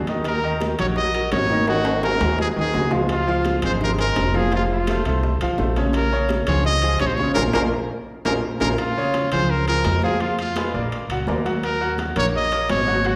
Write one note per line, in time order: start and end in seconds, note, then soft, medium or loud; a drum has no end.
0.00 0.73 D#2 medium
0.07 0.37 D#3 medium
0.07 0.38 D#4 medium
0.07 0.38 D#5 medium
0.07 high bongo soft
0.07 high conga medium
0.07 high timbale medium
0.24 0.60 A#4 medium
0.24 high bongo medium
0.24 high conga soft
0.24 high timbale medium
0.42 0.73 D#3 medium
0.42 0.73 D#4 medium
0.42 0.73 D#5 medium
0.42 high bongo soft
0.42 high conga soft
0.60 high bongo medium
0.60 high conga medium
0.60 high timbale medium
0.79 1.29 A#1 loud
0.79 1.08 F#3 medium
0.79 1.08 F#4 medium
0.79 1.08 A#4 medium
0.79 0.87 C#5 medium
0.79 high conga soft
0.79 low conga medium
0.79 high timbale loud
0.96 1.30 D#5 loud
0.96 high bongo medium
0.96 high conga soft
1.13 1.43 F#3 medium
1.13 1.44 F#4 medium
1.13 1.44 A#4 medium
1.13 high bongo soft
1.13 high conga soft
1.13 high timbale medium
1.32 2.15 G#1 medium
1.32 1.65 C#5 medium
1.32 high bongo medium
1.32 low bongo medium
1.32 high conga medium
1.32 high timbale medium
1.32 low timbale medium
1.49 1.65 D#3 medium
1.49 1.65 D#4 medium
1.49 1.65 D#5 medium
1.49 high bongo soft
1.49 high conga medium
1.67 1.97 D#3 medium
1.67 1.98 D#4 medium
1.67 2.01 F#4 loud
1.67 1.98 D#5 medium
1.67 high bongo medium
1.67 high conga soft
1.67 high timbale medium
1.85 high bongo soft
1.85 high conga soft
1.85 high timbale medium
2.03 2.18 F#3 medium
2.03 2.18 F#4 medium
2.03 2.19 G#4 medium
2.03 2.37 A#4 loud
2.03 high bongo medium
2.03 high conga medium
2.03 high timbale medium
2.21 2.54 D#2 medium
2.21 2.50 F#3 medium
2.21 2.50 F#4 medium
2.21 2.51 G#4 medium
2.21 high conga soft
2.21 low timbale medium
2.39 2.49 G#4 medium
2.39 high bongo medium
2.39 high conga soft
2.39 low timbale medium
2.56 2.73 D#2 medium
2.56 2.71 D#3 medium
2.56 2.71 D#4 medium
2.56 2.71 D#5 medium
2.56 high bongo soft
2.56 high conga soft
2.60 2.92 G#4 loud
2.74 3.58 C#2 medium
2.74 2.89 F#3 medium
2.74 2.89 F#4 medium
2.74 2.89 G#4 medium
2.74 high bongo medium
2.74 low bongo medium
2.74 high conga medium
2.74 low timbale medium
2.91 3.21 F3 medium
2.91 3.21 F4 medium
2.91 3.21 F5 medium
2.91 high bongo soft
2.91 high conga medium
2.91 low timbale medium
3.09 3.60 F4 medium
3.09 high bongo medium
3.09 high conga soft
3.09 high timbale medium
3.27 3.57 F3 medium
3.27 3.57 F4 medium
3.27 3.57 F5 medium
3.27 high bongo soft
3.27 high conga soft
3.45 high bongo medium
3.45 high conga medium
3.45 high timbale medium
3.62 4.13 G#1 loud
3.62 3.93 G#3 medium
3.62 3.93 G#4 medium
3.62 3.93 C5 medium
3.62 3.73 C5 medium
3.62 high conga soft
3.62 low conga medium
3.62 high timbale loud
3.81 3.91 A#4 medium
3.81 high bongo medium
3.81 high conga soft
3.81 low conga medium
3.98 4.28 G#3 medium
3.98 4.28 G#4 medium
3.98 4.38 A#4 medium
3.98 4.28 C5 medium
3.98 high bongo soft
3.98 high conga soft
3.98 high timbale medium
4.16 5.00 F1 medium
4.16 high bongo medium
4.16 low bongo medium
4.16 high conga medium
4.16 high timbale medium
4.16 low timbale medium
4.34 4.49 F3 medium
4.34 4.49 F4 medium
4.34 4.53 G#4 medium
4.34 4.49 F5 medium
4.34 high bongo soft
4.34 high conga medium
4.52 4.81 F3 medium
4.52 4.81 F4 medium
4.52 4.82 F5 medium
4.52 high bongo medium
4.52 high conga soft
4.52 high timbale medium
4.56 4.63 F4 medium
4.70 5.21 F4 medium
4.70 high bongo soft
4.70 high conga soft
4.87 5.03 A3 medium
4.87 5.03 A4 medium
4.87 5.03 C5 medium
4.87 high bongo medium
4.87 high conga medium
4.87 high timbale medium
5.05 5.39 C2 loud
5.05 5.35 A3 medium
5.05 5.35 A4 medium
5.05 5.35 C5 medium
5.05 high conga soft
5.05 high timbale medium
5.23 high bongo medium
5.23 high conga soft
5.41 5.58 C2 medium
5.41 5.56 F3 medium
5.41 5.56 F4 medium
5.41 5.56 F5 medium
5.41 high bongo soft
5.41 high conga soft
5.41 high timbale medium
5.58 6.42 A#1 medium
5.58 5.74 A3 medium
5.58 5.74 A4 medium
5.58 5.74 C5 medium
5.58 high bongo medium
5.58 low bongo medium
5.58 high conga medium
5.76 6.06 C#3 medium
5.76 6.06 C#4 medium
5.76 6.06 C#5 medium
5.76 high bongo soft
5.76 high conga medium
5.76 high timbale medium
5.93 6.29 A#4 medium
5.93 high bongo medium
5.93 high conga soft
5.93 high timbale medium
6.11 6.42 C#3 medium
6.11 6.42 C#4 medium
6.11 6.42 C#5 medium
6.11 high bongo soft
6.11 high conga soft
6.29 high bongo medium
6.29 high conga medium
6.29 high timbale medium
6.47 6.97 C#2 loud
6.47 6.77 F3 medium
6.47 6.78 F4 medium
6.47 6.78 G#4 medium
6.47 6.64 C#5 medium
6.47 high conga soft
6.47 low conga medium
6.47 high timbale loud
6.65 6.99 D#5 loud
6.65 high bongo medium
6.65 high conga soft
6.82 7.12 F3 medium
6.82 7.12 F4 medium
6.82 7.13 G#4 medium
6.82 high bongo soft
6.82 high conga soft
6.82 high timbale medium
6.99 7.34 A#1 medium
6.99 7.08 C#5 loud
6.99 high bongo medium
6.99 low bongo medium
6.99 high conga medium
6.99 high timbale medium
7.07 7.16 C5 medium
7.15 7.34 C#5 loud
7.15 high conga medium
7.19 7.34 C#3 medium
7.19 7.34 C#4 medium
7.19 7.34 C#5 medium
7.19 high bongo soft
7.34 7.50 A#1 loud
7.34 7.48 F4 medium
7.34 7.48 G#4 medium
7.34 7.44 A#4 loud
7.34 7.48 A#4 medium
7.34 low bongo loud
7.34 high conga medium
7.34 high timbale medium
7.53 7.68 A#1 loud
7.53 7.66 F4 loud
7.53 7.66 G#4 medium
7.53 7.62 A#4 loud
7.53 7.66 A#4 medium
7.53 low bongo loud
7.53 high conga medium
7.53 high timbale loud
8.25 8.39 A#1 medium
8.25 8.37 F4 medium
8.25 8.37 G#4 medium
8.25 8.34 A#4 medium
8.25 8.37 A#4 medium
8.25 low bongo medium
8.25 high conga loud
8.25 high timbale loud
8.60 8.74 A#1 medium
8.60 8.73 F4 medium
8.60 8.73 G#4 medium
8.60 8.69 A#4 medium
8.60 8.72 A#4 medium
8.60 low bongo medium
8.60 high conga loud
8.60 high timbale medium
8.78 9.28 F4 medium
8.78 high conga soft
8.78 high timbale medium
8.97 9.26 C#3 medium
8.97 9.26 C#4 medium
8.97 9.27 C#5 medium
8.97 high conga soft
9.14 high conga medium
9.14 high timbale medium
9.14 low timbale medium
9.32 9.81 C#2 loud
9.32 9.61 F3 medium
9.32 9.62 F4 medium
9.32 9.62 G#4 medium
9.32 9.52 C5 medium
9.32 high conga soft
9.32 low conga medium
9.32 high timbale medium
9.50 9.68 A#4 loud
9.50 high conga soft
9.68 9.97 F3 medium
9.68 9.97 F4 medium
9.68 9.98 G#4 medium
9.68 10.01 A#4 loud
9.68 high conga soft
9.68 high timbale medium
9.85 10.68 F2 medium
9.85 high conga medium
9.85 high timbale medium
9.85 low timbale medium
10.02 10.18 F3 medium
10.02 10.18 F4 medium
10.02 10.22 G#4 medium
10.02 10.18 F5 medium
10.02 high conga medium
10.20 10.50 F3 medium
10.20 10.39 F4 medium
10.20 10.50 F4 medium
10.20 10.50 F5 medium
10.20 high conga soft
10.20 high timbale medium
10.39 10.89 F4 medium
10.39 high conga soft
10.39 high timbale medium
10.56 10.71 G#3 medium
10.56 10.71 G#4 medium
10.56 10.72 B4 medium
10.56 high conga medium
10.56 high timbale loud
10.56 low timbale medium
10.74 11.07 A#1 medium
10.74 11.04 A#3 medium
10.74 11.04 A#4 medium
10.74 11.04 D5 medium
10.74 high conga soft
10.92 high conga soft
10.92 high timbale medium
11.09 11.26 C#2 medium
11.09 11.25 F#3 medium
11.09 11.25 F#4 medium
11.09 11.25 F#5 medium
11.09 high conga soft
11.09 high timbale medium
11.27 12.10 D#2 medium
11.27 11.42 A#3 medium
11.27 11.42 A#4 medium
11.27 11.42 D5 medium
11.27 high conga medium
11.27 low timbale medium
11.45 11.74 F#3 medium
11.45 11.75 F#4 medium
11.45 11.75 F#5 medium
11.45 high conga soft
11.45 high timbale medium
11.63 11.97 A#4 loud
11.63 high conga soft
11.63 high timbale medium
11.81 12.10 F#3 medium
11.81 12.10 F#4 medium
11.81 12.10 F#5 medium
11.81 high conga soft
11.98 high conga medium
11.98 high timbale medium
11.98 low timbale medium
12.16 12.66 A#1 loud
12.16 12.45 A#3 medium
12.16 12.45 A#4 medium
12.16 12.46 C#5 medium
12.16 12.26 C#5 loud
12.16 high conga soft
12.16 low conga medium
12.16 high timbale medium
12.34 12.68 D#5 loud
12.34 high conga soft
12.52 12.81 A#3 medium
12.52 12.81 A#4 medium
12.52 12.81 C#5 medium
12.52 high conga soft
12.52 high timbale medium
12.69 13.16 G#1 medium
12.69 13.08 C#5 medium
12.69 high conga medium
12.69 high timbale medium
12.69 low timbale medium
12.87 13.02 F#3 medium
12.87 13.02 F#4 medium
12.87 13.02 F#5 medium
12.87 high conga medium
13.05 13.16 F#3 medium
13.05 13.16 F#4 medium
13.05 13.16 F#5 medium
13.05 high conga soft
13.05 high timbale medium